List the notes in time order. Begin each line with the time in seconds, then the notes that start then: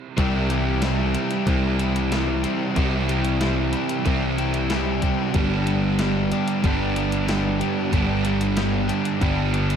0.17 C2 C3 E3 G3 C4 E4 G4, kick, closed hi-hat
0.49 G3 E4 G4, closed hi-hat
0.81 E3 G3 C4 E4 G4, snare, closed hi-hat
1.14 G3 E4 G4, closed hi-hat
1.31 snare, closed hi-hat
1.46 C2 C3 E3 G3 C4 E4 G4, kick, closed hi-hat
1.79 G3 E4 G4, closed hi-hat
1.96 closed hi-hat
2.11 E3 G3 E4 G4, snare, closed hi-hat
2.43 G3 C4 E4 G4, closed hi-hat
2.75 C2 C3 E3 G3 C4 E4 G4, kick, closed hi-hat
3.08 G3 E4 G4, closed hi-hat
3.25 closed hi-hat
3.40 E3 G3 C4 E4 G4, snare, closed hi-hat
3.73 G3 E4 G4, closed hi-hat
3.89 closed hi-hat
4.04 C2 C3 E3 G3 C4 E4 G4, kick, closed hi-hat
4.38 G3 E4 G4, closed hi-hat
4.54 closed hi-hat
4.70 E3 G3 E4 G4, snare, closed hi-hat
5.02 G3 C4 E4 G4, kick, closed hi-hat
5.34 G1 G2 D3 G3 B3 D4 G4, kick, closed hi-hat
5.67 G3 B3 D4 G4, closed hi-hat
5.99 G3 B3 D4 G4, snare, closed hi-hat
6.31 G3 B3 D4 G4, closed hi-hat
6.48 closed hi-hat
6.63 G1 G2 D3 G3 B3 D4 G4, kick, closed hi-hat
6.95 G3 B3 D4 G4, closed hi-hat
7.12 closed hi-hat
7.27 G3 B3 D4 G4, snare, closed hi-hat
7.59 G3 B3 D4 G4, closed hi-hat
7.91 G1 G2 D3 G3 B3 D4 G4, kick, closed hi-hat
8.24 G3 B3 D4 G4, closed hi-hat
8.41 closed hi-hat
8.56 G3 B3 D4 G4, snare, closed hi-hat
8.88 G3 B3 D4 G4, closed hi-hat
9.05 closed hi-hat
9.20 G1 G2 D3 G3 B3 D4 G4, kick, closed hi-hat
9.53 G3 B3 D4 G4, closed hi-hat
9.70 closed hi-hat